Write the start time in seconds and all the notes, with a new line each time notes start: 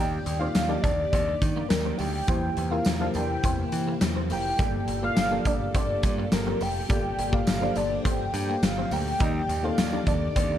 Already playing: D#2 D#3 A#3 D#4 G4 D5 G5
0.00 D5
0.26 D#2, muted clean electric guitar stroke, closed hi-hat, tambourine
0.39 A#3 C4 D#4 G4 D5 F5
0.55 D#2, muted clean electric guitar stroke, snare, closed hi-hat, tambourine
0.68 A#3 D4 D#4 G4 D5
0.82 D#2 D4 D5, kick, closed hi-hat, tambourine
1.11 D#2 C4 D5, kick, closed hi-hat, tambourine
1.28 muted clean electric guitar stroke
1.42 D#3, kick, closed hi-hat, tambourine
1.56 A#3
1.69 D#2 A#4, muted clean electric guitar stroke, snare, closed hi-hat, tambourine
1.85 C4
1.98 D2 A#3 G5, open hi-hat, tambourine
2.27 E2 C3 E3 A#3 C4 E4 G4 C5, kick, closed hi-hat, tambourine
2.57 E2, muted clean electric guitar stroke, closed hi-hat
2.71 A#3 C4 E4 G4 A#4 F5
2.85 E2, muted clean electric guitar stroke, snare, closed hi-hat, tambourine
3.00 A#3 D4 E4 G4 C5 F5
3.14 E2 D4 G5, closed hi-hat, tambourine
3.43 E2 C4, kick, closed hi-hat, tambourine
3.59 muted clean electric guitar stroke
3.72 E3, closed hi-hat, tambourine
3.87 A#3
4.01 E2, muted clean electric guitar stroke, snare, closed hi-hat, tambourine
4.16 C4
4.30 F1 A#3 G5, open hi-hat, tambourine
4.58 G1 G2 A#2 G3 A#3 G4 A4 D5, kick, closed hi-hat, tambourine
4.88 G1, muted clean electric guitar stroke, closed hi-hat
5.02 A#3 G4 A4 D5 F5
5.16 G1, muted clean electric guitar stroke, snare, closed hi-hat, tambourine
5.31 A#3 D4 G4 A4 F5
5.45 G1 D4 D5, kick, closed hi-hat, tambourine
5.75 G1 C4 D5, kick, closed hi-hat, tambourine
5.89 muted clean electric guitar stroke
6.03 G2, kick, closed hi-hat, tambourine
6.18 A#3
6.32 G1 A#4, muted clean electric guitar stroke, snare, closed hi-hat, tambourine
6.47 C4
6.61 F1 A#3 G5, open hi-hat, tambourine
6.89 G1 G2 G3 A#3 G4 A4 D5, kick, closed hi-hat, tambourine
7.19 G1, muted clean electric guitar stroke, closed hi-hat
7.32 A#3 G4 A4 D5 F5, kick
7.47 G1, muted clean electric guitar stroke, snare, closed hi-hat, tambourine
7.61 A#3 D4 G4 A4 C5
7.75 G1 D4 D5, closed hi-hat, tambourine
8.05 G1 C4 G5, kick, closed hi-hat, tambourine
8.21 muted clean electric guitar stroke
8.34 G2, closed hi-hat, tambourine
8.50 A#3
8.62 G1 F5, muted clean electric guitar stroke, snare, closed hi-hat, tambourine
8.78 C4
8.91 D2 A#3 G5, open hi-hat, tambourine
9.19 D#2 D#3 A#3 D#4 G4 D5, kick, closed hi-hat, tambourine
9.49 D#2, muted clean electric guitar stroke, closed hi-hat, tambourine
9.63 A#3 C4 D#4 G4 A4 F5
9.78 D#2, muted clean electric guitar stroke, snare, closed hi-hat, tambourine
9.92 A#3 D4 D#4 G4 D5
10.07 D#2 D4 D5, kick, closed hi-hat, tambourine
10.35 D#2 C4 D5, kick, closed hi-hat, tambourine
10.51 muted clean electric guitar stroke